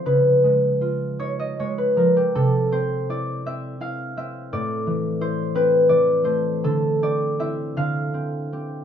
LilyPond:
\new Staff \with { instrumentName = "Harp" } { \time 6/8 \key c \major \tempo 4. = 54 << { ces''4. des''16 ees''16 des''16 ces''16 bes'16 g'16 | a'8 c''8 d''8 e''8 f''8 e''8 | d''4 c''8 b'8 d''8 c''8 | a'8 d''8 e''8 f''4. | } \\ { <des f f'>8 aes8 f'8 ees'8 aes8 f8 | c8 c'8 e'8 c'8 e'8 c'8 | a,8 e8 e'8 c'8 e8 a8 | d8 c'8 <c' e'>8 d8 c'8 <c' g'>8 | } >> }